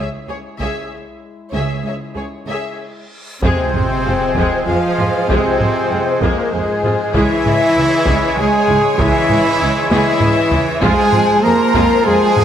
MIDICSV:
0, 0, Header, 1, 14, 480
1, 0, Start_track
1, 0, Key_signature, -4, "minor"
1, 0, Tempo, 625000
1, 1176, Time_signature, 3, 2, 24, 8
1, 4062, Tempo, 614754
1, 9649, End_track
2, 0, Start_track
2, 0, Title_t, "Flute"
2, 0, Program_c, 0, 73
2, 2628, Note_on_c, 0, 72, 78
2, 3581, Note_on_c, 0, 77, 82
2, 3593, Note_off_c, 0, 72, 0
2, 4047, Note_off_c, 0, 77, 0
2, 4052, Note_on_c, 0, 72, 78
2, 4787, Note_on_c, 0, 70, 70
2, 4799, Note_off_c, 0, 72, 0
2, 5016, Note_on_c, 0, 68, 87
2, 5028, Note_off_c, 0, 70, 0
2, 5501, Note_off_c, 0, 68, 0
2, 5506, Note_on_c, 0, 76, 91
2, 6474, Note_on_c, 0, 80, 88
2, 6486, Note_off_c, 0, 76, 0
2, 6953, Note_off_c, 0, 80, 0
2, 6958, Note_on_c, 0, 76, 100
2, 7650, Note_off_c, 0, 76, 0
2, 7655, Note_on_c, 0, 76, 87
2, 8149, Note_off_c, 0, 76, 0
2, 8382, Note_on_c, 0, 80, 105
2, 8831, Note_off_c, 0, 80, 0
2, 8858, Note_on_c, 0, 82, 95
2, 9331, Note_off_c, 0, 82, 0
2, 9354, Note_on_c, 0, 80, 105
2, 9649, Note_off_c, 0, 80, 0
2, 9649, End_track
3, 0, Start_track
3, 0, Title_t, "Violin section"
3, 0, Program_c, 1, 48
3, 218, Note_on_c, 1, 68, 35
3, 280, Note_off_c, 1, 68, 0
3, 453, Note_on_c, 1, 73, 48
3, 676, Note_off_c, 1, 73, 0
3, 1176, Note_on_c, 1, 73, 45
3, 1401, Note_off_c, 1, 73, 0
3, 1418, Note_on_c, 1, 73, 34
3, 1479, Note_off_c, 1, 73, 0
3, 1661, Note_on_c, 1, 68, 30
3, 1723, Note_off_c, 1, 68, 0
3, 1907, Note_on_c, 1, 73, 41
3, 2130, Note_off_c, 1, 73, 0
3, 2629, Note_on_c, 1, 72, 92
3, 3557, Note_off_c, 1, 72, 0
3, 3592, Note_on_c, 1, 77, 83
3, 4056, Note_off_c, 1, 77, 0
3, 4066, Note_on_c, 1, 72, 81
3, 4788, Note_off_c, 1, 72, 0
3, 4797, Note_on_c, 1, 70, 70
3, 5032, Note_off_c, 1, 70, 0
3, 5035, Note_on_c, 1, 68, 78
3, 5517, Note_off_c, 1, 68, 0
3, 5518, Note_on_c, 1, 76, 100
3, 6477, Note_off_c, 1, 76, 0
3, 6477, Note_on_c, 1, 80, 95
3, 6945, Note_off_c, 1, 80, 0
3, 6952, Note_on_c, 1, 76, 100
3, 7666, Note_off_c, 1, 76, 0
3, 7675, Note_on_c, 1, 76, 94
3, 8371, Note_off_c, 1, 76, 0
3, 8382, Note_on_c, 1, 80, 110
3, 8853, Note_off_c, 1, 80, 0
3, 8864, Note_on_c, 1, 82, 105
3, 9334, Note_off_c, 1, 82, 0
3, 9341, Note_on_c, 1, 80, 111
3, 9649, Note_off_c, 1, 80, 0
3, 9649, End_track
4, 0, Start_track
4, 0, Title_t, "Violin section"
4, 0, Program_c, 2, 48
4, 222, Note_on_c, 2, 73, 34
4, 283, Note_off_c, 2, 73, 0
4, 461, Note_on_c, 2, 76, 45
4, 680, Note_off_c, 2, 76, 0
4, 1181, Note_on_c, 2, 76, 44
4, 1404, Note_off_c, 2, 76, 0
4, 1430, Note_on_c, 2, 76, 29
4, 1491, Note_off_c, 2, 76, 0
4, 1670, Note_on_c, 2, 73, 31
4, 1732, Note_off_c, 2, 73, 0
4, 1898, Note_on_c, 2, 76, 41
4, 2126, Note_off_c, 2, 76, 0
4, 2623, Note_on_c, 2, 72, 68
4, 5479, Note_off_c, 2, 72, 0
4, 5515, Note_on_c, 2, 73, 72
4, 8382, Note_on_c, 2, 72, 89
4, 8383, Note_off_c, 2, 73, 0
4, 9649, Note_off_c, 2, 72, 0
4, 9649, End_track
5, 0, Start_track
5, 0, Title_t, "Woodwind section"
5, 0, Program_c, 3, 71
5, 2632, Note_on_c, 3, 72, 67
5, 2634, Note_on_c, 3, 68, 75
5, 2635, Note_on_c, 3, 56, 77
5, 2636, Note_on_c, 3, 80, 80
5, 5483, Note_off_c, 3, 72, 0
5, 5484, Note_off_c, 3, 68, 0
5, 5485, Note_off_c, 3, 56, 0
5, 5485, Note_off_c, 3, 80, 0
5, 5509, Note_on_c, 3, 56, 81
5, 5511, Note_on_c, 3, 68, 73
5, 5511, Note_on_c, 3, 73, 73
5, 5511, Note_on_c, 3, 80, 81
5, 8348, Note_off_c, 3, 56, 0
5, 8349, Note_off_c, 3, 68, 0
5, 8349, Note_off_c, 3, 80, 0
5, 8370, Note_on_c, 3, 60, 89
5, 8373, Note_on_c, 3, 65, 84
5, 8373, Note_on_c, 3, 84, 87
5, 8377, Note_on_c, 3, 72, 89
5, 8380, Note_off_c, 3, 73, 0
5, 9649, Note_off_c, 3, 60, 0
5, 9649, Note_off_c, 3, 65, 0
5, 9649, Note_off_c, 3, 72, 0
5, 9649, Note_off_c, 3, 84, 0
5, 9649, End_track
6, 0, Start_track
6, 0, Title_t, "French horn section"
6, 0, Program_c, 4, 60
6, 0, Note_on_c, 4, 56, 52
6, 0, Note_on_c, 4, 64, 49
6, 2354, Note_off_c, 4, 56, 0
6, 2355, Note_off_c, 4, 64, 0
6, 2628, Note_on_c, 4, 60, 92
6, 3556, Note_off_c, 4, 60, 0
6, 3586, Note_on_c, 4, 65, 103
6, 4058, Note_on_c, 4, 60, 92
6, 4063, Note_off_c, 4, 65, 0
6, 4770, Note_off_c, 4, 60, 0
6, 4781, Note_on_c, 4, 58, 88
6, 5024, Note_off_c, 4, 58, 0
6, 5028, Note_on_c, 4, 56, 99
6, 5514, Note_off_c, 4, 56, 0
6, 5514, Note_on_c, 4, 64, 100
6, 6455, Note_off_c, 4, 64, 0
6, 6474, Note_on_c, 4, 68, 122
6, 6943, Note_on_c, 4, 64, 119
6, 6953, Note_off_c, 4, 68, 0
6, 7649, Note_off_c, 4, 64, 0
6, 7660, Note_on_c, 4, 64, 122
6, 8240, Note_off_c, 4, 64, 0
6, 8373, Note_on_c, 4, 68, 106
6, 8848, Note_off_c, 4, 68, 0
6, 8862, Note_on_c, 4, 70, 114
6, 9332, Note_on_c, 4, 68, 127
6, 9343, Note_off_c, 4, 70, 0
6, 9649, Note_off_c, 4, 68, 0
6, 9649, End_track
7, 0, Start_track
7, 0, Title_t, "Trumpet"
7, 0, Program_c, 5, 56
7, 2624, Note_on_c, 5, 60, 96
7, 3554, Note_off_c, 5, 60, 0
7, 3580, Note_on_c, 5, 65, 75
7, 4058, Note_on_c, 5, 60, 94
7, 4070, Note_off_c, 5, 65, 0
7, 4791, Note_on_c, 5, 58, 74
7, 4803, Note_off_c, 5, 60, 0
7, 5027, Note_on_c, 5, 56, 73
7, 5039, Note_off_c, 5, 58, 0
7, 5505, Note_off_c, 5, 56, 0
7, 5510, Note_on_c, 5, 64, 111
7, 6469, Note_on_c, 5, 68, 88
7, 6480, Note_off_c, 5, 64, 0
7, 6940, Note_off_c, 5, 68, 0
7, 6945, Note_on_c, 5, 64, 109
7, 7650, Note_off_c, 5, 64, 0
7, 7668, Note_on_c, 5, 64, 102
7, 8155, Note_off_c, 5, 64, 0
7, 8377, Note_on_c, 5, 68, 110
7, 8859, Note_on_c, 5, 70, 96
7, 8871, Note_off_c, 5, 68, 0
7, 9341, Note_on_c, 5, 68, 116
7, 9353, Note_off_c, 5, 70, 0
7, 9649, Note_off_c, 5, 68, 0
7, 9649, End_track
8, 0, Start_track
8, 0, Title_t, "Viola section"
8, 0, Program_c, 6, 48
8, 217, Note_on_c, 6, 68, 38
8, 279, Note_off_c, 6, 68, 0
8, 465, Note_on_c, 6, 68, 44
8, 682, Note_off_c, 6, 68, 0
8, 1185, Note_on_c, 6, 68, 46
8, 1406, Note_off_c, 6, 68, 0
8, 1418, Note_on_c, 6, 68, 32
8, 1479, Note_off_c, 6, 68, 0
8, 1654, Note_on_c, 6, 68, 35
8, 1716, Note_off_c, 6, 68, 0
8, 1913, Note_on_c, 6, 68, 41
8, 2133, Note_off_c, 6, 68, 0
8, 2636, Note_on_c, 6, 56, 73
8, 2636, Note_on_c, 6, 68, 83
8, 2854, Note_off_c, 6, 56, 0
8, 2855, Note_off_c, 6, 68, 0
8, 2881, Note_on_c, 6, 68, 52
8, 2883, Note_on_c, 6, 56, 52
8, 2943, Note_off_c, 6, 68, 0
8, 2945, Note_off_c, 6, 56, 0
8, 3117, Note_on_c, 6, 56, 60
8, 3118, Note_on_c, 6, 65, 53
8, 3179, Note_off_c, 6, 56, 0
8, 3180, Note_off_c, 6, 65, 0
8, 3358, Note_on_c, 6, 56, 80
8, 3362, Note_on_c, 6, 68, 73
8, 3577, Note_off_c, 6, 56, 0
8, 3579, Note_off_c, 6, 68, 0
8, 3595, Note_on_c, 6, 68, 53
8, 3597, Note_on_c, 6, 56, 60
8, 3656, Note_off_c, 6, 68, 0
8, 3659, Note_off_c, 6, 56, 0
8, 3831, Note_on_c, 6, 56, 67
8, 3832, Note_on_c, 6, 65, 69
8, 3892, Note_off_c, 6, 56, 0
8, 3893, Note_off_c, 6, 65, 0
8, 4071, Note_on_c, 6, 68, 78
8, 4072, Note_on_c, 6, 56, 83
8, 4292, Note_off_c, 6, 56, 0
8, 4292, Note_off_c, 6, 68, 0
8, 4313, Note_on_c, 6, 56, 46
8, 4313, Note_on_c, 6, 68, 53
8, 4376, Note_off_c, 6, 56, 0
8, 4376, Note_off_c, 6, 68, 0
8, 4559, Note_on_c, 6, 56, 70
8, 4566, Note_on_c, 6, 65, 58
8, 4622, Note_off_c, 6, 56, 0
8, 4628, Note_off_c, 6, 65, 0
8, 4792, Note_on_c, 6, 68, 72
8, 4797, Note_on_c, 6, 56, 77
8, 5013, Note_off_c, 6, 68, 0
8, 5016, Note_off_c, 6, 56, 0
8, 5033, Note_on_c, 6, 68, 53
8, 5037, Note_on_c, 6, 56, 53
8, 5095, Note_off_c, 6, 68, 0
8, 5099, Note_off_c, 6, 56, 0
8, 5274, Note_on_c, 6, 56, 63
8, 5277, Note_on_c, 6, 65, 68
8, 5337, Note_off_c, 6, 56, 0
8, 5339, Note_off_c, 6, 65, 0
8, 5511, Note_on_c, 6, 68, 86
8, 5516, Note_on_c, 6, 56, 76
8, 5737, Note_off_c, 6, 68, 0
8, 5740, Note_off_c, 6, 56, 0
8, 5759, Note_on_c, 6, 56, 56
8, 5759, Note_on_c, 6, 68, 59
8, 5821, Note_off_c, 6, 56, 0
8, 5821, Note_off_c, 6, 68, 0
8, 6000, Note_on_c, 6, 56, 54
8, 6001, Note_on_c, 6, 64, 64
8, 6062, Note_off_c, 6, 56, 0
8, 6064, Note_off_c, 6, 64, 0
8, 6235, Note_on_c, 6, 68, 74
8, 6237, Note_on_c, 6, 56, 74
8, 6458, Note_off_c, 6, 68, 0
8, 6459, Note_off_c, 6, 56, 0
8, 6481, Note_on_c, 6, 68, 63
8, 6483, Note_on_c, 6, 56, 61
8, 6544, Note_off_c, 6, 68, 0
8, 6545, Note_off_c, 6, 56, 0
8, 6715, Note_on_c, 6, 56, 68
8, 6718, Note_on_c, 6, 64, 65
8, 6778, Note_off_c, 6, 56, 0
8, 6780, Note_off_c, 6, 64, 0
8, 6951, Note_on_c, 6, 56, 83
8, 6952, Note_on_c, 6, 68, 76
8, 7174, Note_off_c, 6, 56, 0
8, 7174, Note_off_c, 6, 68, 0
8, 7189, Note_on_c, 6, 68, 64
8, 7191, Note_on_c, 6, 56, 64
8, 7251, Note_off_c, 6, 68, 0
8, 7253, Note_off_c, 6, 56, 0
8, 7424, Note_on_c, 6, 64, 72
8, 7428, Note_on_c, 6, 56, 59
8, 7487, Note_off_c, 6, 64, 0
8, 7490, Note_off_c, 6, 56, 0
8, 7667, Note_on_c, 6, 56, 83
8, 7671, Note_on_c, 6, 68, 93
8, 7888, Note_off_c, 6, 56, 0
8, 7890, Note_off_c, 6, 68, 0
8, 7911, Note_on_c, 6, 68, 74
8, 7912, Note_on_c, 6, 56, 76
8, 7973, Note_off_c, 6, 68, 0
8, 7975, Note_off_c, 6, 56, 0
8, 8146, Note_on_c, 6, 64, 83
8, 8147, Note_on_c, 6, 56, 69
8, 8208, Note_off_c, 6, 64, 0
8, 8210, Note_off_c, 6, 56, 0
8, 8380, Note_on_c, 6, 56, 96
8, 8384, Note_on_c, 6, 65, 103
8, 8604, Note_off_c, 6, 56, 0
8, 8606, Note_off_c, 6, 65, 0
8, 8629, Note_on_c, 6, 65, 62
8, 8632, Note_on_c, 6, 56, 66
8, 8692, Note_off_c, 6, 65, 0
8, 8695, Note_off_c, 6, 56, 0
8, 8864, Note_on_c, 6, 56, 72
8, 8865, Note_on_c, 6, 60, 79
8, 8926, Note_off_c, 6, 56, 0
8, 8928, Note_off_c, 6, 60, 0
8, 9100, Note_on_c, 6, 65, 92
8, 9105, Note_on_c, 6, 56, 92
8, 9325, Note_off_c, 6, 65, 0
8, 9327, Note_off_c, 6, 56, 0
8, 9342, Note_on_c, 6, 65, 70
8, 9348, Note_on_c, 6, 56, 74
8, 9404, Note_off_c, 6, 65, 0
8, 9410, Note_off_c, 6, 56, 0
8, 9581, Note_on_c, 6, 56, 81
8, 9584, Note_on_c, 6, 60, 83
8, 9644, Note_off_c, 6, 56, 0
8, 9646, Note_off_c, 6, 60, 0
8, 9649, End_track
9, 0, Start_track
9, 0, Title_t, "Trombone section"
9, 0, Program_c, 7, 61
9, 2625, Note_on_c, 7, 53, 82
9, 2630, Note_on_c, 7, 56, 73
9, 5480, Note_off_c, 7, 53, 0
9, 5483, Note_off_c, 7, 56, 0
9, 5524, Note_on_c, 7, 49, 82
9, 5530, Note_on_c, 7, 56, 79
9, 8244, Note_off_c, 7, 49, 0
9, 8244, Note_off_c, 7, 56, 0
9, 8377, Note_on_c, 7, 53, 100
9, 8380, Note_on_c, 7, 48, 94
9, 9649, Note_off_c, 7, 48, 0
9, 9649, Note_off_c, 7, 53, 0
9, 9649, End_track
10, 0, Start_track
10, 0, Title_t, "Cello section"
10, 0, Program_c, 8, 48
10, 221, Note_on_c, 8, 37, 34
10, 282, Note_off_c, 8, 37, 0
10, 456, Note_on_c, 8, 37, 51
10, 517, Note_off_c, 8, 37, 0
10, 1173, Note_on_c, 8, 37, 47
10, 1234, Note_off_c, 8, 37, 0
10, 1420, Note_on_c, 8, 37, 32
10, 1482, Note_off_c, 8, 37, 0
10, 1653, Note_on_c, 8, 37, 29
10, 1714, Note_off_c, 8, 37, 0
10, 1897, Note_on_c, 8, 37, 44
10, 1959, Note_off_c, 8, 37, 0
10, 2623, Note_on_c, 8, 48, 75
10, 3554, Note_off_c, 8, 48, 0
10, 3580, Note_on_c, 8, 53, 87
10, 4059, Note_on_c, 8, 48, 82
10, 4060, Note_off_c, 8, 53, 0
10, 4770, Note_off_c, 8, 48, 0
10, 4784, Note_on_c, 8, 46, 70
10, 5022, Note_on_c, 8, 44, 71
10, 5026, Note_off_c, 8, 46, 0
10, 5508, Note_on_c, 8, 52, 96
10, 5510, Note_off_c, 8, 44, 0
10, 6453, Note_off_c, 8, 52, 0
10, 6474, Note_on_c, 8, 56, 89
10, 6951, Note_on_c, 8, 52, 103
10, 6953, Note_off_c, 8, 56, 0
10, 7653, Note_off_c, 8, 52, 0
10, 7664, Note_on_c, 8, 52, 92
10, 8365, Note_off_c, 8, 52, 0
10, 8379, Note_on_c, 8, 56, 107
10, 8855, Note_on_c, 8, 58, 96
10, 8861, Note_off_c, 8, 56, 0
10, 9339, Note_off_c, 8, 58, 0
10, 9344, Note_on_c, 8, 56, 107
10, 9649, Note_off_c, 8, 56, 0
10, 9649, End_track
11, 0, Start_track
11, 0, Title_t, "Double bass section"
11, 0, Program_c, 10, 48
11, 1174, Note_on_c, 10, 37, 48
11, 1401, Note_off_c, 10, 37, 0
11, 2628, Note_on_c, 10, 41, 75
11, 2690, Note_off_c, 10, 41, 0
11, 2868, Note_on_c, 10, 41, 57
11, 2929, Note_off_c, 10, 41, 0
11, 3107, Note_on_c, 10, 41, 57
11, 3169, Note_off_c, 10, 41, 0
11, 3342, Note_on_c, 10, 41, 85
11, 3403, Note_off_c, 10, 41, 0
11, 3585, Note_on_c, 10, 41, 63
11, 3647, Note_off_c, 10, 41, 0
11, 3826, Note_on_c, 10, 41, 52
11, 3887, Note_off_c, 10, 41, 0
11, 4062, Note_on_c, 10, 41, 81
11, 4125, Note_off_c, 10, 41, 0
11, 4304, Note_on_c, 10, 41, 49
11, 4366, Note_off_c, 10, 41, 0
11, 4544, Note_on_c, 10, 41, 57
11, 4607, Note_off_c, 10, 41, 0
11, 4790, Note_on_c, 10, 41, 84
11, 4853, Note_off_c, 10, 41, 0
11, 5023, Note_on_c, 10, 41, 56
11, 5086, Note_off_c, 10, 41, 0
11, 5269, Note_on_c, 10, 41, 59
11, 5331, Note_off_c, 10, 41, 0
11, 5514, Note_on_c, 10, 37, 87
11, 5576, Note_off_c, 10, 37, 0
11, 5752, Note_on_c, 10, 37, 61
11, 5814, Note_off_c, 10, 37, 0
11, 5999, Note_on_c, 10, 37, 60
11, 6061, Note_off_c, 10, 37, 0
11, 6240, Note_on_c, 10, 37, 84
11, 6303, Note_off_c, 10, 37, 0
11, 6482, Note_on_c, 10, 37, 56
11, 6545, Note_off_c, 10, 37, 0
11, 6719, Note_on_c, 10, 37, 60
11, 6781, Note_off_c, 10, 37, 0
11, 6951, Note_on_c, 10, 37, 90
11, 7013, Note_off_c, 10, 37, 0
11, 7189, Note_on_c, 10, 37, 68
11, 7252, Note_off_c, 10, 37, 0
11, 7434, Note_on_c, 10, 37, 73
11, 7496, Note_off_c, 10, 37, 0
11, 7668, Note_on_c, 10, 37, 93
11, 7730, Note_off_c, 10, 37, 0
11, 7905, Note_on_c, 10, 37, 67
11, 7968, Note_off_c, 10, 37, 0
11, 8145, Note_on_c, 10, 37, 68
11, 8207, Note_off_c, 10, 37, 0
11, 8384, Note_on_c, 10, 41, 96
11, 8447, Note_off_c, 10, 41, 0
11, 8623, Note_on_c, 10, 41, 63
11, 8685, Note_off_c, 10, 41, 0
11, 8866, Note_on_c, 10, 41, 67
11, 8929, Note_off_c, 10, 41, 0
11, 9108, Note_on_c, 10, 41, 102
11, 9171, Note_off_c, 10, 41, 0
11, 9351, Note_on_c, 10, 41, 76
11, 9413, Note_off_c, 10, 41, 0
11, 9590, Note_on_c, 10, 41, 67
11, 9649, Note_off_c, 10, 41, 0
11, 9649, End_track
12, 0, Start_track
12, 0, Title_t, "Reverse cymbal"
12, 0, Program_c, 11, 119
12, 1175, Note_on_c, 11, 60, 42
12, 2629, Note_off_c, 11, 60, 0
12, 9649, End_track
13, 0, Start_track
13, 0, Title_t, "Sub drop"
13, 0, Program_c, 12, 103
13, 2628, Note_on_c, 12, 60, 79
13, 4063, Note_off_c, 12, 60, 0
13, 9649, End_track
14, 0, Start_track
14, 0, Title_t, "Taiko and cinematic ensemble drums"
14, 459, Note_on_c, 9, 41, 30
14, 536, Note_off_c, 9, 41, 0
14, 2631, Note_on_c, 9, 41, 80
14, 2708, Note_off_c, 9, 41, 0
14, 2870, Note_on_c, 9, 45, 52
14, 2947, Note_off_c, 9, 45, 0
14, 3339, Note_on_c, 9, 41, 75
14, 3416, Note_off_c, 9, 41, 0
14, 3828, Note_on_c, 9, 45, 49
14, 3904, Note_off_c, 9, 45, 0
14, 4062, Note_on_c, 9, 41, 91
14, 4140, Note_off_c, 9, 41, 0
14, 4309, Note_on_c, 9, 45, 54
14, 4387, Note_off_c, 9, 45, 0
14, 4784, Note_on_c, 9, 41, 80
14, 4862, Note_off_c, 9, 41, 0
14, 5269, Note_on_c, 9, 45, 45
14, 5347, Note_off_c, 9, 45, 0
14, 5510, Note_on_c, 9, 41, 80
14, 5588, Note_off_c, 9, 41, 0
14, 5752, Note_on_c, 9, 45, 57
14, 5830, Note_off_c, 9, 45, 0
14, 6232, Note_on_c, 9, 41, 91
14, 6310, Note_off_c, 9, 41, 0
14, 6712, Note_on_c, 9, 45, 54
14, 6790, Note_off_c, 9, 45, 0
14, 6952, Note_on_c, 9, 41, 90
14, 7030, Note_off_c, 9, 41, 0
14, 7191, Note_on_c, 9, 45, 58
14, 7269, Note_off_c, 9, 45, 0
14, 7673, Note_on_c, 9, 48, 80
14, 7751, Note_off_c, 9, 48, 0
14, 7901, Note_on_c, 9, 45, 89
14, 7979, Note_off_c, 9, 45, 0
14, 8139, Note_on_c, 9, 43, 83
14, 8217, Note_off_c, 9, 43, 0
14, 8382, Note_on_c, 9, 41, 95
14, 8460, Note_off_c, 9, 41, 0
14, 8620, Note_on_c, 9, 45, 55
14, 8698, Note_off_c, 9, 45, 0
14, 9101, Note_on_c, 9, 41, 83
14, 9179, Note_off_c, 9, 41, 0
14, 9585, Note_on_c, 9, 45, 57
14, 9649, Note_off_c, 9, 45, 0
14, 9649, End_track
0, 0, End_of_file